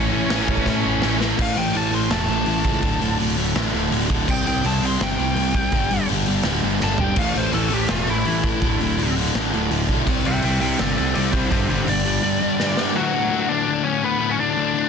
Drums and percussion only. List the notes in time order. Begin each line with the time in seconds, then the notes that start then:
0.30 snare, open hi-hat
0.48 kick
0.57 kick
0.66 kick, snare
1.02 snare
1.21 snare
1.39 kick, crash
1.57 open hi-hat
1.75 open hi-hat
1.93 open hi-hat
2.11 snare, open hi-hat
2.28 open hi-hat
2.46 open hi-hat
2.64 kick, open hi-hat
2.83 kick, open hi-hat
3.01 open hi-hat
3.20 open hi-hat
3.38 open hi-hat
3.56 snare, open hi-hat
3.75 open hi-hat
3.92 open hi-hat
4.10 kick
4.28 kick, crash
4.47 open hi-hat
4.64 open hi-hat
4.83 open hi-hat
5.01 snare, open hi-hat
5.19 open hi-hat
5.36 open hi-hat
5.54 kick, open hi-hat
5.72 kick, open hi-hat
5.91 open hi-hat
6.09 open hi-hat
6.26 open hi-hat
6.43 snare, open hi-hat
6.62 open hi-hat
6.80 snare
6.98 floor tom
7.16 kick, crash
7.35 open hi-hat
7.53 open hi-hat
7.70 open hi-hat
7.89 snare, open hi-hat
8.07 open hi-hat
8.25 open hi-hat
8.43 kick, open hi-hat
8.62 kick, open hi-hat
8.81 open hi-hat
8.99 open hi-hat
9.18 open hi-hat
9.35 snare, open hi-hat
9.53 open hi-hat
9.71 open hi-hat
9.89 kick, open hi-hat
10.07 kick, crash
10.25 open hi-hat
10.42 open hi-hat
10.61 open hi-hat
10.79 snare, open hi-hat
10.98 open hi-hat
11.15 open hi-hat
11.33 kick, open hi-hat
11.51 kick, open hi-hat
11.70 open hi-hat
11.88 open hi-hat
12.05 open hi-hat
12.60 snare
12.77 snare